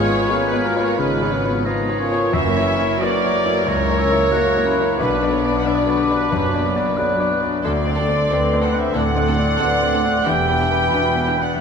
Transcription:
Already playing: G#1 G#2 G#3 B3 C#4 F4 G#4 B4 C#5 G#5 F6
0.05 B3 F4 C#5
0.11 F4
0.28 A#3 B3 C#4 F4 C#5 F6
0.46 B3 G#4 B4
0.53 B3 F4 C#5
0.63 G#3 F#4 A#4
0.76 B3 F4 C#5
0.82 B3 A#4 C#5
0.96 G#1 G#2 C#3 G#3 D#4 G#4 B4 B5
1.00 C#4 B4
1.16 F4
1.22 B3 F4 C#5
1.32 F#3 C#4
1.44 B3 F4 C#5
1.49 B3
1.64 F3 G#3 B3 D#4 F4 C#5 A#5 D#6
1.83 B3
1.88 B3 F4 C#5
1.97 C#4 F4 A#4 C#5 G#5
2.01 C#5
2.11 B3 F4 C#5
2.16 F4
2.32 F#1 F#2 E3 F#3 F#4 A#4 C#5 E5 A#5 C#6
2.49 A#3
2.56 A#3 E4 C#5
2.66 C#4 E4 B5
2.78 A#3 E4 C#5
2.84 E4
2.97 F#3 C#4 F#4 D5 A#5
3.02 A#3 E4 B4 C#5
3.16 A#3
3.23 A#3 E4 C#5
3.33 F#3
3.45 A#3 E4 C#5
3.50 A#3
3.63 C#2 C#4 A#4 C#5 C#6
3.68 C#2 A#4 C#5 A#5
3.84 E4
3.90 A#3 E4 C#5
3.96 C#4 A#4 E6
4.11 A#3 E4 C#5
4.31 F#3 A#3 F#4 C#5 A#5 F#6
4.35 E4
4.48 A#3
4.56 A#3 E4 C#5
4.64 C#4 E4 B5
4.80 A#3 E4 C#5
4.97 B1 B2 D3 B3 D4 F#4 B4 B5 D6
5.13 F#3
5.22 B3 D4 D5
5.29 B3 A4 C#5
5.43 B3 D4 B4 D5
5.48 D4
5.57 D5 F#5
5.64 B3 D4 C#5 D5 E5 D6
5.75 B4 D5
5.80 F#3 C#5
5.86 B3 D4 A4 C#5 D5
5.96 D3 G4 B4
6.10 F#3 B3 D4 D5
6.30 F#1 F#2 F#3 B3
6.48 D4
6.54 B3 D4 D5
6.65 B3
6.75 B3 D4 D5
6.80 F#3
6.97 D3 F#3 B3 D4 D5 B5 F#6
7.16 F#3 B3
7.20 D4 D5
7.32 B3 E4
7.42 B3 D4 D5
7.48 D4
7.63 D2 D3 C4 D4 F#4 A4 D5 C6 D6
7.87 C4 D4 D5
7.95 C4 D4 A4
8.01 A4
8.08 C4 D4 D5
8.29 D2 C4 D4 A4 B4 D5
8.53 C4 D4 D5
8.62 C4 D4 A4 D5 F#5
8.73 C4 D4 D5
8.78 C5 E5
8.94 D2 A2 D3 C4 D4 A4 D5 F#5 C6 D6
8.98 A4
9.15 C4 D4 D5
9.27 C4 D4 F#4 A4
9.38 C4 D4 D5
9.58 D2 C4 D4 A4 B4 D5
9.82 C4 D4 D5
9.93 C4 D4 A4
10.05 C4 D4 D5
10.24 E1 E2 E3 B3 D4 G4 G5 B5 D6
10.28 E5
10.49 B3 D4 B4
10.59 B3 D4 G4
10.71 B3 D4 B4
10.90 E2 B3 F#4 G4
10.94 E1 B3 D4 B4
11.14 B3 D4 B4
11.26 B3 D4 E4 G4
11.38 B3 D4 B4
11.42 D5 F#5
11.57 E5

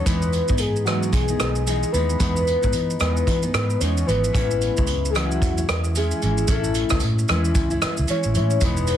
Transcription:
0.06 E2 E3 G#3 B3 D#4 B4, kick, closed hi-hat, shaker
0.22 shaker
0.33 closed hi-hat, shaker
0.48 G#2 G#3 B3 D#4, kick, shaker
0.58 G#4, closed hi-hat, shaker
0.76 shaker
0.85 E3 G#3 B3 D#4 F#4, cross-stick, closed hi-hat, shaker
1.03 shaker
1.12 B1 G#4, kick, closed hi-hat, shaker
1.28 G#3 B3 D#4, shaker
1.40 B1, cross-stick, closed hi-hat, shaker
1.55 shaker
1.66 E3 G#3 B3 D#4 G#4, closed hi-hat, shaker
1.83 shaker
1.92 D#2 E3 G#3 B3 D#4 B4, closed hi-hat, shaker
2.10 shaker
2.18 E2 E3 G#3 B3 D#4, kick, closed hi-hat, shaker
2.36 shaker
2.47 closed hi-hat, shaker
2.61 G#2 G#3 B3 D#4, kick, shaker
2.73 E3, closed hi-hat, shaker
2.90 shaker
3.00 E2 E3 G#3 B3 D#4 B4, cross-stick, closed hi-hat, shaker
3.17 shaker
3.27 E3, kick, closed hi-hat, shaker
3.42 G#3 B3 D#4, shaker
3.54 G#2 B4, cross-stick, closed hi-hat, shaker
3.70 shaker
3.80 E2 E3 G#3 B3 D#4 C#5, closed hi-hat, shaker
3.97 shaker
4.06 G#1 E3 G#3 B3 D#4 B4, closed hi-hat, shaker
4.24 shaker
4.33 A1 A2 E3 G#3 C#4 E4, kick, closed hi-hat, shaker
4.51 shaker
4.61 closed hi-hat, shaker
4.76 C#2 G#3 C#4 E4, kick, shaker
4.87 closed hi-hat, shaker
5.05 shaker
5.10 E3 G#3 G#4
5.15 C#4 E4 F#4, cross-stick, closed hi-hat, shaker
5.31 shaker
5.42 E2, kick, closed hi-hat, shaker
5.56 G#3 C#4 E4, shaker
5.69 E2, cross-stick, closed hi-hat, shaker
5.84 shaker
5.95 E3 G#3 C#4 E4 G#4, closed hi-hat, shaker
6.11 shaker
6.22 G#1 E3 G#3 C#4 E4, closed hi-hat, shaker
6.38 shaker
6.48 A1 A2 E3 C#4 E4 A4, kick, closed hi-hat, shaker
6.64 shaker
6.74 closed hi-hat, shaker
6.89 C#2 G#3 C#4 E4, kick, cross-stick, shaker
7.00 A2, closed hi-hat, shaker
7.19 shaker
7.28 E2 E3 G#3 C#4 E4, cross-stick, closed hi-hat, shaker
7.45 shaker
7.55 C#2, kick, closed hi-hat, shaker
7.70 G#3 C#4 E4, shaker
7.82 muted fingered electric bass stroke, cross-stick, closed hi-hat, shaker
7.97 C#2, shaker
8.08 E3 G#3 C#4 E4 C#5, muted fingered electric bass stroke, closed hi-hat, shaker
8.23 A1, shaker
8.34 A2 E3 G#3 C#4 E4 C#5, closed hi-hat, shaker
8.50 shaker
8.61 E1 E3 G#3 B3 D#4 B4, kick, closed hi-hat, shaker
8.77 shaker
8.87 closed hi-hat, shaker

